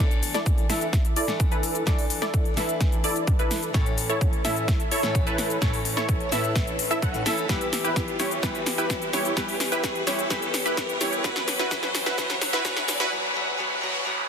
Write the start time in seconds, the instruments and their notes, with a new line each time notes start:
0.00 steel-string acoustic guitar E3 A3 D4 A4, supersaw synth E4 A4 D5, digital synth lead D5, riser
0.11 closed hi-hat, shaker
0.23 open hi-hat, shaker
0.34 supersaw synth E4 A4 D5, digital synth lead D5, snare, closed hi-hat, shaker
0.46 kick, closed hi-hat, shaker
0.58 closed hi-hat
0.69 steel-string acoustic guitar E3 A3 D4 A4, supersaw synth E4 A4 E5, digital synth lead E5, snare, open hi-hat, shaker
0.81 closed hi-hat, shaker
0.93 kick, snare, closed hi-hat, shaker
1.05 closed hi-hat, shaker
1.16 supersaw synth E4 A4 D5, digital synth lead D5, open hi-hat, shaker
1.27 steel-string acoustic guitar E3 A3 D4 A4, snare, closed hi-hat, shaker
1.40 kick, closed hi-hat, shaker
1.52 supersaw synth E4 A4 B4, digital synth lead B4, closed hi-hat, shaker
1.63 open hi-hat, shaker
1.75 closed hi-hat, shaker
1.86 steel-string acoustic guitar E3 A3 D4 A4, supersaw synth E4 A4 D5, digital synth lead D5, kick, snare, closed hi-hat, shaker
1.98 open hi-hat, shaker
2.10 open hi-hat, shaker
2.22 supersaw synth E4 A4 D5, digital synth lead D5, snare, closed hi-hat, shaker
2.34 kick, closed hi-hat, shaker
2.45 closed hi-hat
2.56 steel-string acoustic guitar E3 A3 D4 B4, supersaw synth E4 A4 E5, digital synth lead E5, snare, open hi-hat, shaker
2.69 closed hi-hat, shaker
2.81 kick, snare, closed hi-hat, shaker
2.92 closed hi-hat, shaker
3.04 supersaw synth E4 A4 D5, digital synth lead D5, open hi-hat, shaker
3.16 closed hi-hat, shaker
3.27 kick, closed hi-hat, shaker
3.39 supersaw synth E4 A4 B4, digital synth lead B4, closed hi-hat, shaker
3.51 snare, open hi-hat, shaker
3.63 closed hi-hat, shaker
3.73 steel-string acoustic guitar A2 E3 A3 C#4 A4, supersaw synth E4 A4 C#5, digital synth lead C#5, kick, snare, closed hi-hat, shaker
3.86 closed hi-hat, shaker
3.98 open hi-hat, shaker
4.09 supersaw synth E4 A4 C#5, digital synth lead C#5, closed hi-hat, shaker
4.21 kick, closed hi-hat, shaker
4.33 closed hi-hat
4.44 steel-string acoustic guitar A2 E3 A3 C#4 A4, supersaw synth E4 A4 E5, digital synth lead E5, snare, open hi-hat, shaker
4.56 closed hi-hat, shaker
4.68 kick, snare, closed hi-hat, shaker
4.80 closed hi-hat, shaker
4.91 supersaw synth E4 A4 C#5, digital synth lead C#5, open hi-hat, shaker
5.02 steel-string acoustic guitar A2 E3 A3 C#4 A4, snare, closed hi-hat, shaker
5.15 kick, closed hi-hat, shaker
5.27 supersaw synth E4 A4 B4, digital synth lead B4, closed hi-hat, shaker
5.38 snare, open hi-hat, shaker
5.50 closed hi-hat, shaker
5.61 steel-string acoustic guitar A2 E3 A3 C#4 A4, supersaw synth E4 A4 C#5, digital synth lead C#5, kick, snare, closed hi-hat, shaker
5.74 open hi-hat, shaker
5.85 open hi-hat, shaker
5.97 supersaw synth E4 A4 C#5, digital synth lead C#5, snare, shaker
6.09 kick, closed hi-hat, shaker
6.20 closed hi-hat
6.31 steel-string acoustic guitar A2 E3 A3 C#4 B4, supersaw synth E4 A4 E5, digital synth lead E5, snare, open hi-hat, shaker
6.44 closed hi-hat, shaker
6.56 kick, snare, closed hi-hat, shaker
6.67 closed hi-hat, shaker
6.79 open hi-hat, shaker
6.91 supersaw synth E4 A4 E5, digital synth lead E5, closed hi-hat, shaker
7.02 supersaw synth E4 A4 F#5, digital synth lead F#5, kick, closed hi-hat, shaker
7.13 steel-string acoustic guitar A2 E3 A3 C#4 B4, closed hi-hat, shaker
7.25 steel-string acoustic guitar E3 A3 C#4 A4, supersaw synth E4 A4 E5, digital synth lead E5, snare, open hi-hat, shaker
7.38 closed hi-hat, shaker
7.48 steel-string acoustic guitar E3 G3 B3 G4, supersaw synth E4 G4 B4, digital synth lead B4, kick, snare, closed hi-hat, shaker
7.61 closed hi-hat, shaker
7.73 snare, open hi-hat, shaker
7.84 supersaw synth E4 G4 B4, digital synth lead B4, closed hi-hat, shaker
7.96 kick, snare, closed hi-hat, shaker
8.08 closed hi-hat
8.19 steel-string acoustic guitar E3 G3 B3 G4, supersaw synth E4 G4 C#5, digital synth lead C#5, snare, open hi-hat, shaker
8.31 closed hi-hat, shaker
8.42 steel-string acoustic guitar E3 G3 B3 G4, supersaw synth E4 G4 B4, digital synth lead B4, kick, snare, closed hi-hat, shaker
8.55 closed hi-hat, shaker
8.66 snare, open hi-hat, shaker
8.78 supersaw synth E4 G4 B4, digital synth lead B4, closed hi-hat, shaker
8.90 kick, snare, closed hi-hat, shaker
9.02 closed hi-hat, shaker
9.13 steel-string acoustic guitar E3 G3 B3 G4, supersaw synth E4 G4 C#5, digital synth lead C#5, snare, open hi-hat, shaker
9.25 closed hi-hat, shaker
9.36 steel-string acoustic guitar E3 G3 B3 G4, supersaw synth E4 G4 B4, digital synth lead B4, kick, snare, closed hi-hat, shaker
9.48 open hi-hat, shaker
9.60 snare, open hi-hat, shaker
9.72 supersaw synth E4 G4 B4, digital synth lead B4, closed hi-hat, shaker
9.84 kick, snare, closed hi-hat, shaker
9.95 closed hi-hat
10.06 steel-string acoustic guitar E3 G3 B3 G4, supersaw synth E4 G4 C#5, digital synth lead C#5, snare, open hi-hat, shaker
10.19 closed hi-hat, shaker
10.29 steel-string acoustic guitar E3 G3 B3 G4, supersaw synth E4 G4 B4, digital synth lead B4, kick, snare, closed hi-hat, shaker
10.42 closed hi-hat, shaker
10.54 snare, open hi-hat, shaker
10.66 supersaw synth E4 G4 B4, digital synth lead B4, closed hi-hat, shaker
10.77 kick, snare, closed hi-hat, shaker
10.89 closed hi-hat, shaker
11.00 steel-string acoustic guitar E3 G3 B3 G4, supersaw synth E4 G4 C#5, digital synth lead C#5, snare, open hi-hat, shaker
11.13 closed hi-hat, shaker
11.23 steel-string acoustic guitar E3 F#3 B3 F#4, supersaw synth E4 F#4 B4, digital synth lead B4, kick, snare, closed hi-hat, shaker
11.36 snare, closed hi-hat, shaker
11.48 snare, open hi-hat, shaker
11.59 supersaw synth E4 F#4 B4, digital synth lead B4, snare, shaker
11.70 steel-string acoustic guitar E3 F#3 B3 F#4, supersaw synth E4 F#4 B4, digital synth lead B4, kick, snare, closed hi-hat, shaker
11.83 snare, closed hi-hat
11.95 snare, open hi-hat, shaker
12.06 supersaw synth E4 F#4 B4, digital synth lead B4, snare, closed hi-hat, shaker
12.17 steel-string acoustic guitar E3 F#3 B3 F#4, supersaw synth E4 F#4 B4, digital synth lead B4, kick, snare, closed hi-hat, shaker
12.30 snare, closed hi-hat, shaker
12.41 snare, open hi-hat, shaker
12.53 supersaw synth E4 F#4 B4, digital synth lead B4, snare, closed hi-hat, shaker
12.64 steel-string acoustic guitar E3 F#3 B3 F#4, supersaw synth E4 F#4 B4, digital synth lead B4, kick, snare, closed hi-hat, shaker
12.77 snare, closed hi-hat, shaker
12.88 snare, open hi-hat, shaker
13.00 supersaw synth E4 F#4 B4, digital synth lead B4, snare, closed hi-hat, shaker
13.11 steel-string acoustic guitar E3 F#3 B3 F#4, noise sweep
13.34 steel-string acoustic guitar E3 F#3 B3 F#4
13.58 steel-string acoustic guitar E3 F#3 B3 F#4
13.81 steel-string acoustic guitar E3 F#3 B3 F#4
14.04 steel-string acoustic guitar E3 F#3 B3 F#4